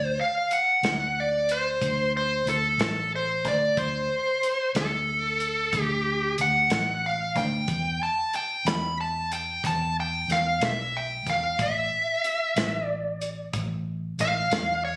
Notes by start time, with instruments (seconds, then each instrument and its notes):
Already playing: fingered electric bass D2, lead electric guitar D5
0.05 lead electric guitar C5
0.21 lead electric guitar F5
0.51 lead electric guitar F#5, closed hi-hat
0.83 fingered electric bass D2, snare, closed hi-hat
1.20 lead electric guitar D5
1.49 lead electric guitar C5, closed hi-hat
1.82 fingered electric bass D2, kick, closed hi-hat
2.17 lead electric guitar C5
2.46 fingered electric bass D2, lead electric guitar A4, closed hi-hat
2.78 fingered electric bass A1, lead electric guitar A4, snare, closed hi-hat
3.16 lead electric guitar C5
3.45 fingered electric bass D2, lead electric guitar D5, kick, snare, closed hi-hat
3.77 fingered electric bass D2, lead electric guitar C5, kick, closed hi-hat
4.43 closed hi-hat
4.75 fingered electric bass D2, lead electric guitar A4, snare, closed hi-hat
5.40 closed hi-hat
5.73 fingered electric bass D2, kick, closed hi-hat
5.82 lead electric guitar G4
6.38 fingered electric bass D2, lead electric guitar F#5, closed hi-hat
6.70 fingered electric bass A1, snare, closed hi-hat
7.06 lead electric guitar F5
7.36 fingered electric bass D2, lead electric guitar G5, kick, snare, closed hi-hat
7.68 fingered electric bass E2, kick, closed hi-hat
8.03 lead electric guitar A5
8.33 lead electric guitar G5, closed hi-hat
8.65 fingered electric bass E2, lead electric guitar B5, snare, closed hi-hat
9.01 lead electric guitar A5
9.32 lead electric guitar G5, closed hi-hat
9.64 fingered electric bass E2, lead electric guitar A5, kick, closed hi-hat
10.00 lead electric guitar G5
10.28 fingered electric bass E2, snare, closed hi-hat
10.32 lead electric guitar F5
10.61 fingered electric bass B1, snare, closed hi-hat
10.65 lead electric guitar E5
10.97 lead electric guitar G5
11.27 fingered electric bass E2, lead electric guitar F5, kick, snare, closed hi-hat
11.59 fingered electric bass A1, lead electric guitar E5, kick, closed hi-hat
12.24 closed hi-hat
12.56 fingered electric bass A1, snare, closed hi-hat
12.86 lead electric guitar D5
13.21 closed hi-hat
13.53 fingered electric bass A1, kick, closed hi-hat
14.18 fingered electric bass A1, lead electric guitar F5, snare, closed hi-hat
14.51 fingered electric bass E2, snare, closed hi-hat
14.85 lead electric guitar C#5